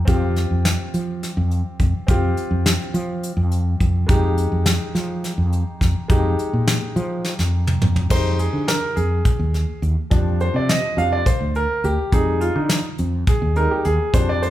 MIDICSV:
0, 0, Header, 1, 4, 480
1, 0, Start_track
1, 0, Tempo, 574163
1, 65, Time_signature, 7, 3, 24, 8
1, 12122, End_track
2, 0, Start_track
2, 0, Title_t, "Grand piano"
2, 0, Program_c, 0, 0
2, 44, Note_on_c, 0, 60, 64
2, 55, Note_on_c, 0, 65, 61
2, 72, Note_on_c, 0, 67, 72
2, 1699, Note_off_c, 0, 60, 0
2, 1705, Note_off_c, 0, 65, 0
2, 1713, Note_off_c, 0, 67, 0
2, 1728, Note_on_c, 0, 60, 68
2, 1744, Note_on_c, 0, 65, 61
2, 1760, Note_on_c, 0, 67, 73
2, 3380, Note_off_c, 0, 60, 0
2, 3388, Note_off_c, 0, 65, 0
2, 3396, Note_off_c, 0, 67, 0
2, 3399, Note_on_c, 0, 56, 68
2, 3413, Note_on_c, 0, 63, 62
2, 3429, Note_on_c, 0, 67, 82
2, 5054, Note_off_c, 0, 56, 0
2, 5061, Note_off_c, 0, 63, 0
2, 5069, Note_off_c, 0, 67, 0
2, 5086, Note_on_c, 0, 56, 68
2, 5099, Note_on_c, 0, 63, 61
2, 5111, Note_on_c, 0, 67, 76
2, 6737, Note_off_c, 0, 56, 0
2, 6743, Note_off_c, 0, 63, 0
2, 6749, Note_off_c, 0, 67, 0
2, 6767, Note_on_c, 0, 55, 49
2, 6778, Note_on_c, 0, 56, 44
2, 6779, Note_on_c, 0, 63, 56
2, 6781, Note_on_c, 0, 72, 94
2, 7014, Note_on_c, 0, 68, 70
2, 7026, Note_off_c, 0, 72, 0
2, 7255, Note_on_c, 0, 70, 84
2, 7262, Note_off_c, 0, 68, 0
2, 7458, Note_off_c, 0, 55, 0
2, 7463, Note_off_c, 0, 56, 0
2, 7464, Note_off_c, 0, 63, 0
2, 7479, Note_off_c, 0, 70, 0
2, 7489, Note_on_c, 0, 68, 69
2, 8179, Note_off_c, 0, 68, 0
2, 8447, Note_on_c, 0, 53, 52
2, 8451, Note_on_c, 0, 55, 43
2, 8456, Note_on_c, 0, 62, 58
2, 8702, Note_on_c, 0, 72, 77
2, 8823, Note_off_c, 0, 72, 0
2, 8828, Note_on_c, 0, 74, 72
2, 8935, Note_on_c, 0, 75, 81
2, 8946, Note_off_c, 0, 74, 0
2, 9154, Note_off_c, 0, 53, 0
2, 9158, Note_off_c, 0, 55, 0
2, 9161, Note_off_c, 0, 62, 0
2, 9166, Note_on_c, 0, 53, 45
2, 9171, Note_on_c, 0, 55, 37
2, 9174, Note_on_c, 0, 62, 48
2, 9180, Note_on_c, 0, 77, 86
2, 9184, Note_off_c, 0, 75, 0
2, 9301, Note_on_c, 0, 74, 77
2, 9302, Note_off_c, 0, 77, 0
2, 9387, Note_off_c, 0, 53, 0
2, 9390, Note_off_c, 0, 55, 0
2, 9392, Note_off_c, 0, 62, 0
2, 9411, Note_off_c, 0, 74, 0
2, 9416, Note_on_c, 0, 72, 77
2, 9640, Note_off_c, 0, 72, 0
2, 9664, Note_on_c, 0, 70, 88
2, 9903, Note_on_c, 0, 67, 81
2, 9908, Note_off_c, 0, 70, 0
2, 10132, Note_on_c, 0, 55, 50
2, 10138, Note_on_c, 0, 56, 46
2, 10140, Note_on_c, 0, 68, 82
2, 10141, Note_on_c, 0, 63, 58
2, 10148, Note_off_c, 0, 67, 0
2, 10373, Note_on_c, 0, 65, 73
2, 10387, Note_off_c, 0, 68, 0
2, 10455, Note_off_c, 0, 55, 0
2, 10458, Note_off_c, 0, 56, 0
2, 10460, Note_off_c, 0, 63, 0
2, 10496, Note_on_c, 0, 63, 57
2, 10500, Note_off_c, 0, 65, 0
2, 10721, Note_off_c, 0, 63, 0
2, 11105, Note_on_c, 0, 68, 71
2, 11331, Note_on_c, 0, 55, 43
2, 11337, Note_on_c, 0, 56, 39
2, 11339, Note_on_c, 0, 63, 51
2, 11342, Note_on_c, 0, 70, 83
2, 11350, Note_off_c, 0, 68, 0
2, 11462, Note_on_c, 0, 67, 68
2, 11465, Note_off_c, 0, 70, 0
2, 11552, Note_off_c, 0, 55, 0
2, 11555, Note_off_c, 0, 56, 0
2, 11556, Note_off_c, 0, 63, 0
2, 11577, Note_on_c, 0, 68, 81
2, 11585, Note_off_c, 0, 67, 0
2, 11813, Note_on_c, 0, 53, 50
2, 11817, Note_on_c, 0, 55, 46
2, 11822, Note_on_c, 0, 72, 88
2, 11823, Note_on_c, 0, 62, 59
2, 11827, Note_off_c, 0, 68, 0
2, 11945, Note_off_c, 0, 72, 0
2, 11949, Note_on_c, 0, 74, 80
2, 12059, Note_on_c, 0, 72, 78
2, 12069, Note_off_c, 0, 74, 0
2, 12122, Note_off_c, 0, 53, 0
2, 12122, Note_off_c, 0, 55, 0
2, 12122, Note_off_c, 0, 62, 0
2, 12122, Note_off_c, 0, 72, 0
2, 12122, End_track
3, 0, Start_track
3, 0, Title_t, "Fretless electric bass"
3, 0, Program_c, 1, 35
3, 64, Note_on_c, 1, 41, 94
3, 372, Note_off_c, 1, 41, 0
3, 424, Note_on_c, 1, 41, 74
3, 630, Note_off_c, 1, 41, 0
3, 786, Note_on_c, 1, 53, 77
3, 1093, Note_off_c, 1, 53, 0
3, 1145, Note_on_c, 1, 41, 92
3, 1350, Note_off_c, 1, 41, 0
3, 1503, Note_on_c, 1, 41, 75
3, 1606, Note_off_c, 1, 41, 0
3, 1740, Note_on_c, 1, 41, 83
3, 1947, Note_off_c, 1, 41, 0
3, 2096, Note_on_c, 1, 41, 75
3, 2304, Note_off_c, 1, 41, 0
3, 2458, Note_on_c, 1, 53, 86
3, 2768, Note_off_c, 1, 53, 0
3, 2814, Note_on_c, 1, 41, 90
3, 3125, Note_off_c, 1, 41, 0
3, 3180, Note_on_c, 1, 41, 77
3, 3386, Note_off_c, 1, 41, 0
3, 3420, Note_on_c, 1, 41, 90
3, 3728, Note_off_c, 1, 41, 0
3, 3776, Note_on_c, 1, 41, 78
3, 3983, Note_off_c, 1, 41, 0
3, 4136, Note_on_c, 1, 53, 82
3, 4445, Note_off_c, 1, 53, 0
3, 4496, Note_on_c, 1, 41, 91
3, 4702, Note_off_c, 1, 41, 0
3, 4858, Note_on_c, 1, 41, 74
3, 4961, Note_off_c, 1, 41, 0
3, 5097, Note_on_c, 1, 41, 90
3, 5303, Note_off_c, 1, 41, 0
3, 5462, Note_on_c, 1, 46, 72
3, 5665, Note_off_c, 1, 46, 0
3, 5819, Note_on_c, 1, 53, 98
3, 6126, Note_off_c, 1, 53, 0
3, 6177, Note_on_c, 1, 41, 84
3, 6485, Note_off_c, 1, 41, 0
3, 6537, Note_on_c, 1, 41, 79
3, 6742, Note_off_c, 1, 41, 0
3, 6774, Note_on_c, 1, 41, 79
3, 7083, Note_off_c, 1, 41, 0
3, 7133, Note_on_c, 1, 50, 72
3, 7340, Note_off_c, 1, 50, 0
3, 7496, Note_on_c, 1, 41, 83
3, 7702, Note_off_c, 1, 41, 0
3, 7853, Note_on_c, 1, 39, 76
3, 8060, Note_off_c, 1, 39, 0
3, 8211, Note_on_c, 1, 39, 86
3, 8317, Note_off_c, 1, 39, 0
3, 8454, Note_on_c, 1, 41, 86
3, 8764, Note_off_c, 1, 41, 0
3, 8812, Note_on_c, 1, 48, 76
3, 9020, Note_off_c, 1, 48, 0
3, 9170, Note_on_c, 1, 41, 79
3, 9379, Note_off_c, 1, 41, 0
3, 9535, Note_on_c, 1, 38, 70
3, 9742, Note_off_c, 1, 38, 0
3, 9897, Note_on_c, 1, 38, 81
3, 10001, Note_off_c, 1, 38, 0
3, 10135, Note_on_c, 1, 41, 82
3, 10445, Note_off_c, 1, 41, 0
3, 10497, Note_on_c, 1, 50, 73
3, 10704, Note_off_c, 1, 50, 0
3, 10860, Note_on_c, 1, 41, 81
3, 11066, Note_off_c, 1, 41, 0
3, 11218, Note_on_c, 1, 39, 77
3, 11425, Note_off_c, 1, 39, 0
3, 11581, Note_on_c, 1, 39, 83
3, 11684, Note_off_c, 1, 39, 0
3, 11818, Note_on_c, 1, 41, 87
3, 12122, Note_off_c, 1, 41, 0
3, 12122, End_track
4, 0, Start_track
4, 0, Title_t, "Drums"
4, 62, Note_on_c, 9, 42, 75
4, 64, Note_on_c, 9, 36, 97
4, 145, Note_off_c, 9, 42, 0
4, 147, Note_off_c, 9, 36, 0
4, 303, Note_on_c, 9, 38, 32
4, 303, Note_on_c, 9, 42, 58
4, 387, Note_off_c, 9, 38, 0
4, 387, Note_off_c, 9, 42, 0
4, 544, Note_on_c, 9, 38, 94
4, 544, Note_on_c, 9, 42, 74
4, 627, Note_off_c, 9, 38, 0
4, 627, Note_off_c, 9, 42, 0
4, 785, Note_on_c, 9, 42, 56
4, 868, Note_off_c, 9, 42, 0
4, 1029, Note_on_c, 9, 38, 33
4, 1029, Note_on_c, 9, 42, 70
4, 1112, Note_off_c, 9, 38, 0
4, 1112, Note_off_c, 9, 42, 0
4, 1264, Note_on_c, 9, 42, 47
4, 1347, Note_off_c, 9, 42, 0
4, 1501, Note_on_c, 9, 42, 52
4, 1502, Note_on_c, 9, 36, 63
4, 1584, Note_off_c, 9, 42, 0
4, 1586, Note_off_c, 9, 36, 0
4, 1739, Note_on_c, 9, 42, 76
4, 1742, Note_on_c, 9, 36, 94
4, 1823, Note_off_c, 9, 42, 0
4, 1826, Note_off_c, 9, 36, 0
4, 1983, Note_on_c, 9, 42, 53
4, 2066, Note_off_c, 9, 42, 0
4, 2223, Note_on_c, 9, 38, 98
4, 2223, Note_on_c, 9, 42, 78
4, 2306, Note_off_c, 9, 38, 0
4, 2306, Note_off_c, 9, 42, 0
4, 2460, Note_on_c, 9, 42, 63
4, 2544, Note_off_c, 9, 42, 0
4, 2703, Note_on_c, 9, 42, 76
4, 2787, Note_off_c, 9, 42, 0
4, 2939, Note_on_c, 9, 42, 58
4, 3022, Note_off_c, 9, 42, 0
4, 3181, Note_on_c, 9, 36, 64
4, 3181, Note_on_c, 9, 42, 54
4, 3264, Note_off_c, 9, 36, 0
4, 3264, Note_off_c, 9, 42, 0
4, 3417, Note_on_c, 9, 42, 79
4, 3420, Note_on_c, 9, 36, 105
4, 3501, Note_off_c, 9, 42, 0
4, 3503, Note_off_c, 9, 36, 0
4, 3658, Note_on_c, 9, 42, 58
4, 3741, Note_off_c, 9, 42, 0
4, 3894, Note_on_c, 9, 38, 98
4, 3894, Note_on_c, 9, 42, 77
4, 3977, Note_off_c, 9, 38, 0
4, 3977, Note_off_c, 9, 42, 0
4, 4140, Note_on_c, 9, 38, 34
4, 4140, Note_on_c, 9, 42, 54
4, 4224, Note_off_c, 9, 38, 0
4, 4224, Note_off_c, 9, 42, 0
4, 4381, Note_on_c, 9, 38, 30
4, 4381, Note_on_c, 9, 42, 76
4, 4465, Note_off_c, 9, 38, 0
4, 4465, Note_off_c, 9, 42, 0
4, 4619, Note_on_c, 9, 42, 51
4, 4703, Note_off_c, 9, 42, 0
4, 4858, Note_on_c, 9, 36, 64
4, 4861, Note_on_c, 9, 38, 32
4, 4861, Note_on_c, 9, 42, 48
4, 4941, Note_off_c, 9, 36, 0
4, 4945, Note_off_c, 9, 38, 0
4, 4945, Note_off_c, 9, 42, 0
4, 5097, Note_on_c, 9, 36, 95
4, 5097, Note_on_c, 9, 42, 74
4, 5180, Note_off_c, 9, 42, 0
4, 5181, Note_off_c, 9, 36, 0
4, 5341, Note_on_c, 9, 42, 54
4, 5424, Note_off_c, 9, 42, 0
4, 5580, Note_on_c, 9, 38, 101
4, 5580, Note_on_c, 9, 42, 75
4, 5664, Note_off_c, 9, 38, 0
4, 5664, Note_off_c, 9, 42, 0
4, 5821, Note_on_c, 9, 42, 59
4, 5905, Note_off_c, 9, 42, 0
4, 6057, Note_on_c, 9, 38, 53
4, 6140, Note_off_c, 9, 38, 0
4, 6177, Note_on_c, 9, 38, 47
4, 6261, Note_off_c, 9, 38, 0
4, 6415, Note_on_c, 9, 47, 66
4, 6499, Note_off_c, 9, 47, 0
4, 6534, Note_on_c, 9, 45, 81
4, 6618, Note_off_c, 9, 45, 0
4, 6653, Note_on_c, 9, 43, 71
4, 6737, Note_off_c, 9, 43, 0
4, 6773, Note_on_c, 9, 49, 86
4, 6775, Note_on_c, 9, 36, 93
4, 6856, Note_off_c, 9, 49, 0
4, 6859, Note_off_c, 9, 36, 0
4, 7015, Note_on_c, 9, 42, 58
4, 7099, Note_off_c, 9, 42, 0
4, 7257, Note_on_c, 9, 38, 100
4, 7257, Note_on_c, 9, 42, 78
4, 7341, Note_off_c, 9, 38, 0
4, 7341, Note_off_c, 9, 42, 0
4, 7497, Note_on_c, 9, 42, 55
4, 7581, Note_off_c, 9, 42, 0
4, 7733, Note_on_c, 9, 42, 78
4, 7735, Note_on_c, 9, 36, 96
4, 7817, Note_off_c, 9, 42, 0
4, 7818, Note_off_c, 9, 36, 0
4, 7977, Note_on_c, 9, 38, 28
4, 7977, Note_on_c, 9, 42, 51
4, 8060, Note_off_c, 9, 38, 0
4, 8060, Note_off_c, 9, 42, 0
4, 8217, Note_on_c, 9, 42, 52
4, 8300, Note_off_c, 9, 42, 0
4, 8455, Note_on_c, 9, 36, 97
4, 8455, Note_on_c, 9, 42, 68
4, 8538, Note_off_c, 9, 36, 0
4, 8538, Note_off_c, 9, 42, 0
4, 8697, Note_on_c, 9, 42, 52
4, 8781, Note_off_c, 9, 42, 0
4, 8939, Note_on_c, 9, 38, 94
4, 8939, Note_on_c, 9, 42, 74
4, 9023, Note_off_c, 9, 38, 0
4, 9023, Note_off_c, 9, 42, 0
4, 9181, Note_on_c, 9, 42, 52
4, 9264, Note_off_c, 9, 42, 0
4, 9415, Note_on_c, 9, 36, 90
4, 9417, Note_on_c, 9, 42, 77
4, 9499, Note_off_c, 9, 36, 0
4, 9501, Note_off_c, 9, 42, 0
4, 9657, Note_on_c, 9, 42, 48
4, 9740, Note_off_c, 9, 42, 0
4, 9900, Note_on_c, 9, 42, 54
4, 9984, Note_off_c, 9, 42, 0
4, 10136, Note_on_c, 9, 36, 90
4, 10136, Note_on_c, 9, 42, 74
4, 10220, Note_off_c, 9, 36, 0
4, 10220, Note_off_c, 9, 42, 0
4, 10377, Note_on_c, 9, 42, 60
4, 10460, Note_off_c, 9, 42, 0
4, 10612, Note_on_c, 9, 38, 94
4, 10612, Note_on_c, 9, 42, 78
4, 10696, Note_off_c, 9, 38, 0
4, 10696, Note_off_c, 9, 42, 0
4, 10854, Note_on_c, 9, 42, 60
4, 10937, Note_off_c, 9, 42, 0
4, 11095, Note_on_c, 9, 42, 79
4, 11096, Note_on_c, 9, 36, 98
4, 11179, Note_off_c, 9, 42, 0
4, 11180, Note_off_c, 9, 36, 0
4, 11335, Note_on_c, 9, 42, 49
4, 11419, Note_off_c, 9, 42, 0
4, 11577, Note_on_c, 9, 42, 51
4, 11660, Note_off_c, 9, 42, 0
4, 11818, Note_on_c, 9, 36, 104
4, 11818, Note_on_c, 9, 42, 75
4, 11902, Note_off_c, 9, 36, 0
4, 11902, Note_off_c, 9, 42, 0
4, 12061, Note_on_c, 9, 42, 57
4, 12122, Note_off_c, 9, 42, 0
4, 12122, End_track
0, 0, End_of_file